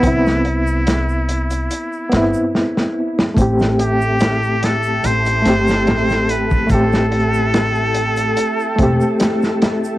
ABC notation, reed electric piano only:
X:1
M:4/4
L:1/8
Q:"Swing 16ths" 1/4=72
K:Am
V:1 name="Reed electric piano"
[B,CE]4- [B,CE] [B,CE]3 | [A,CG]4- [A,CG] [A,CG]3 | [A,CG]4- [A,CG] [A,CG]3 |]